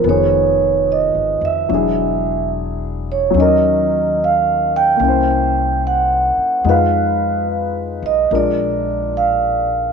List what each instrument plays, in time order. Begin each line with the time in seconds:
0.00 upright bass F1, upright piano F3 B3
0.07 upright piano D#3 G#4, vibraphone C#5
0.92 vibraphone D#5
1.15 upright bass G#1
1.41 upright bass F1, vibraphone E5
1.69 upright bass E1, upright piano F#3 D4 E4
1.74 upright piano G#4
3.12 vibraphone C#5
3.31 upright bass D#2, upright piano F#3 C#4
3.38 upright piano D#4 A#4, vibraphone D#5
4.24 vibraphone F5
4.76 vibraphone G5
4.96 upright bass C2, upright piano A#3 C#4
5.04 upright piano E4
5.08 upright piano C5
5.87 vibraphone F#5
6.37 muted upright bass stroke
6.64 upright bass F2, upright piano G#3 D#4 F4
6.69 upright piano B4, vibraphone F5
8.03 upright bass B1, vibraphone D#5
8.31 upright bass A#1, upright piano G#3 D4 F4 A#4
8.35 vibraphone D5
9.17 vibraphone F5